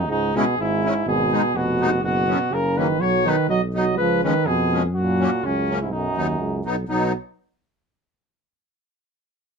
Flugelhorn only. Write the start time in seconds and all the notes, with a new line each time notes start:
0.11 D#4
0.37 G#4
0.60 E4
1.08 G#4
1.56 F#4
2.03 F#4
2.53 A#4
2.77 B4
3.01 C#5
3.28 B4
3.50 D#5
3.76 D#5
3.97 B4
4.24 B4
4.46 G#4
4.95 F#4
5.44 C#4
5.81 E4
5.91 D#4
6.88 F#4